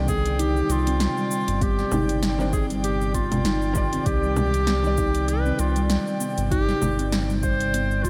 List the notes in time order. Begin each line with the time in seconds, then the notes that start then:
Already playing: C2 C3 D3 D#3 D5 G5
0.08 B3 G#4, kick, cabasa
0.26 closed hi-hat, cabasa
0.39 D#4 G4, closed hi-hat, cabasa
0.57 cabasa
0.69 C2 F4, closed hi-hat, cabasa
0.87 C4, closed hi-hat, cabasa
1.00 snare, closed hi-hat, cabasa
1.17 G3, cabasa
1.31 cabasa
1.48 G1, closed hi-hat, cabasa
1.61 B3 G4, kick, closed hi-hat, cabasa
1.79 snare, cabasa
1.92 G1 D#4, low conga, cabasa
2.09 closed hi-hat, cabasa
2.23 snare, closed hi-hat, cabasa
2.39 D#3 G3 C4 D4, cabasa
2.53 G#4, kick, cabasa
2.70 G3, closed hi-hat, cabasa
2.84 G4, closed hi-hat, cabasa
3.01 cabasa
3.14 B3 F4, kick, closed hi-hat, cabasa
3.32 closed hi-hat, low conga, cabasa
3.45 G1 D#4, snare, closed hi-hat, cabasa
3.62 cabasa
3.73 D#3 G3 D5, kick, cabasa
3.93 C4, closed hi-hat, cabasa
4.06 C2 G4, kick, closed hi-hat, cabasa
4.23 G3, cabasa
4.36 low conga, cabasa
4.54 closed hi-hat, cabasa
4.67 B3, snare, closed hi-hat, cabasa
4.83 D#3 G3 D5, cabasa
4.98 D#4, kick, cabasa
5.15 closed hi-hat, cabasa
5.28 B4, closed hi-hat, cabasa
5.46 C4, cabasa
5.59 C2 F4, closed hi-hat, cabasa
5.76 G3, closed hi-hat, cabasa
5.90 snare, closed hi-hat, cabasa
6.07 cabasa
6.20 B3, cabasa
6.38 G1, closed hi-hat, cabasa
6.51 D#4 G4, kick, closed hi-hat, cabasa
6.69 snare, cabasa
6.82 G1, low conga, cabasa
6.99 C4, closed hi-hat, cabasa
7.12 snare, closed hi-hat, cabasa
7.30 G3, cabasa
7.43 C5, kick, cabasa
7.60 closed hi-hat, cabasa
7.74 B3, closed hi-hat, cabasa
7.91 cabasa
8.03 F4, kick, closed hi-hat, cabasa